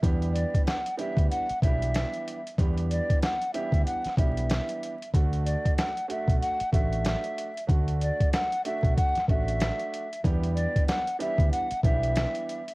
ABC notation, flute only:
X:1
M:4/4
L:1/8
Q:"Swing 16ths" 1/4=94
K:Em
V:1 name="Flute"
z d f e f e3 | z d f e f e3 | z d f e f e3 | z d f e f e3 |
z d f e f e3 |]